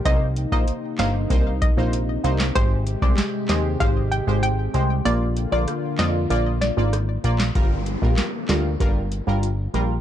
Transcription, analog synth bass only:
X:1
M:4/4
L:1/16
Q:1/4=96
K:Gphr
V:1 name="Analog synth bass" clef=bass
C,,3 B,,, z2 G,,,2 C,,3 B,,,3 C,,2 | A,,,3 C,, z2 E,,2 A,,,3 A,,,3 C,,2 | B,,,3 B,,, z2 F,,2 B,,,3 A,,,3 B,,,2 | G,,,3 B,,, z2 D,,2 G,,,3 G,,,3 B,,,2 |]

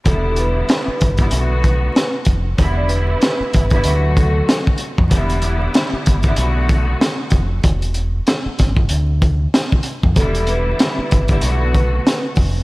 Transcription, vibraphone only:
X:1
M:4/4
L:1/16
Q:"Swing 16ths" 1/4=95
K:Em
V:1 name="Vibraphone"
A2 B8 B3 z3 | z d B8 A3 z3 | z16 | z16 |
A2 B8 B3 z3 |]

